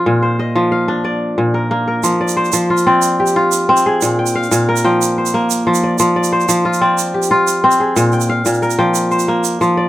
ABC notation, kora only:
X:1
M:12/8
L:1/8
Q:3/8=122
K:Fdor
V:1 name="Kora"
F c e2 f2 d3 B2 B- | B d c2 F d2 G3 z A- | A g f2 B g2 c3 z d- | d d c2 F d2 G3 z A- |
A g f2 B g2 c3 z d |]
V:2 name="Kora" clef=bass
B,,2 z F,2 D2 z B,,2 B,2 | F,2 z F,2 C2 z F2 C2 | B,,2 z B,,2 F,2 z B,2 F,2 | F,2 z F,2 C2 z F2 C2 |
B,,2 z B,,2 F,2 z B,2 F,2 |]